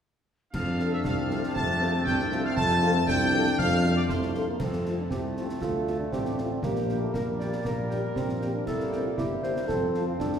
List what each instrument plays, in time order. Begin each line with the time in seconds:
0.53 tuba F2, trombone section C3 A3, woodwind section C4 A5, euphonium D4, trumpet section F5, piccolo F6, concert bass drum, crash
0.79 french horn section C4 F4 A4, snare
0.92 trumpet section E5, piccolo E6
1.04 tuba C2, trumpet section F5, piccolo F6, concert bass drum, snare
1.30 french horn section C4 F4 A4, snare
1.43 snare
1.54 tuba F2, euphonium C4, trumpet section A5, piccolo A6, concert bass drum
1.81 french horn section C4 F4 A4, snare
2.05 tuba C2, euphonium D4, trumpet section G5, piccolo G6, concert bass drum, snare
2.19 snare
2.32 french horn section C4 F4 A4, snare
2.44 trumpet section F5, piccolo F6
2.55 tuba F2, euphonium C4, trumpet section A5, piccolo A6, concert bass drum
2.82 french horn section C4 F4 A4, snare
3.07 tuba C2, euphonium D4, trumpet section G5, piccolo G6, concert bass drum, snare
3.34 french horn section C4 F4 A4, snare
3.46 snare
3.58 tuba F2, trumpet section F5, piccolo F6, concert bass drum
3.84 french horn section C4 F4 A4, snare
3.96 trumpet section D5, piccolo D6
4.08 tuba C2, euphonium A3, trumpet section C5, piccolo C6, concert bass drum, snare
4.22 snare
4.34 french horn section C4 F4 A4, snare
4.48 euphonium A#3
4.59 tuba F2, trombone section C3 A3, euphonium C4, woodwind section A4, concert bass drum, snare, crash
4.72 snare
4.85 french horn section A3 C4 F4, trumpet section A5, snare
4.98 euphonium D4
5.10 tuba C2, euphonium C4, woodwind section G4, concert bass drum, snare
5.36 french horn section A3 C4 F4, woodwind section F4, trumpet section A5, snare
5.49 snare
5.61 tuba D2, trombone section D3, euphonium F4, woodwind section A4, concert bass drum, snare
5.87 french horn section A3 D4 F4, trumpet section A5, snare
6.00 euphonium D4
6.11 tuba A1, euphonium C4, woodwind section G4, concert bass drum, snare
6.25 snare
6.38 french horn section A3 D4 F4, woodwind section F4, trumpet section A5, snare
6.62 tuba A#1, trombone section G3 A#3, euphonium A#3, woodwind section G4, concert bass drum, snare
6.76 snare
6.89 french horn section A#3 D4 G4, trumpet section G5, snare
7.01 euphonium A3
7.13 tuba A#1, euphonium A#3, woodwind section A#4, concert bass drum, snare
7.39 french horn section A#3 D4 G4, woodwind section D5, trumpet section G5, snare
7.52 snare
7.65 tuba A#1, woodwind section A#4, concert bass drum, snare
7.90 french horn section A#3 D4 G4, trumpet section G5, snare
8.15 tuba A#1, euphonium C4, concert bass drum, snare
8.29 snare
8.40 french horn section A#3 D4 G4, trumpet section G5, snare
8.55 euphonium D4
8.66 tuba C2, trombone section G3 A#3, euphonium E4, woodwind section A4, concert bass drum, snare, crash
8.80 snare
8.91 french horn section A#3 C4 G4, trumpet section G5, snare
9.06 euphonium F4
9.17 tuba G1, euphonium E4, woodwind section G4, concert bass drum, snare
9.42 french horn section A#3 C4 G4, woodwind section C5, trumpet section G5, snare
9.56 snare
9.68 tuba F2, trombone section F3 C4, euphonium A4, concert bass drum, snare
9.93 french horn section A3 C4 F4, trumpet section A5, snare
10.08 euphonium F4
10.19 tuba C2, euphonium D4, woodwind section A4, concert bass drum, snare
10.32 snare